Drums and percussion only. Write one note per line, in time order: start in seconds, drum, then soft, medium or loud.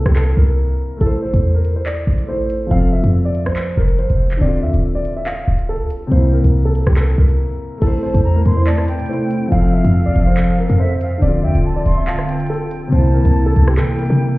0.06 cross-stick loud
0.16 clap loud
1.01 closed hi-hat medium
1.34 closed hi-hat medium
1.65 closed hi-hat medium
1.86 clap loud
1.86 closed hi-hat medium
2.18 closed hi-hat medium
2.50 closed hi-hat medium
2.71 closed hi-hat medium
3.04 closed hi-hat medium
3.35 closed hi-hat medium
3.46 cross-stick loud
3.56 clap loud
3.56 closed hi-hat medium
3.88 closed hi-hat medium
3.99 closed hi-hat medium
4.10 closed hi-hat medium
4.31 clap medium
4.31 closed hi-hat medium
4.41 closed hi-hat medium
4.74 closed hi-hat medium
5.05 closed hi-hat medium
5.26 clap loud
5.26 closed hi-hat medium
5.59 closed hi-hat medium
5.90 closed hi-hat medium
6.12 closed hi-hat medium
6.44 closed hi-hat medium
6.75 closed hi-hat medium
6.87 cross-stick loud
6.97 clap loud
6.97 closed hi-hat medium
7.04 closed hi-hat soft
7.11 closed hi-hat soft
7.29 closed hi-hat medium
7.82 closed hi-hat medium
7.82 crash loud
8.15 closed hi-hat medium
8.45 closed hi-hat medium
8.67 clap loud
8.78 cross-stick medium
8.88 closed hi-hat medium
8.99 closed hi-hat medium
9.06 closed hi-hat medium
9.13 closed hi-hat soft
9.31 closed hi-hat medium
9.52 closed hi-hat medium
9.85 closed hi-hat medium
10.16 closed hi-hat medium
10.37 clap loud
10.37 closed hi-hat medium
10.58 closed hi-hat medium
10.69 closed hi-hat medium
11.01 closed hi-hat medium
11.22 closed hi-hat medium
11.55 closed hi-hat medium
11.86 closed hi-hat medium
12.07 clap loud
12.19 cross-stick medium
12.29 closed hi-hat medium
12.40 closed hi-hat medium
12.47 closed hi-hat medium
12.54 closed hi-hat soft
12.71 closed hi-hat medium
12.92 closed hi-hat medium
13.25 closed hi-hat medium
13.56 closed hi-hat medium
13.68 cross-stick loud
13.77 clap loud
13.77 closed hi-hat medium
13.99 closed hi-hat medium
14.06 closed hi-hat medium
14.13 closed hi-hat soft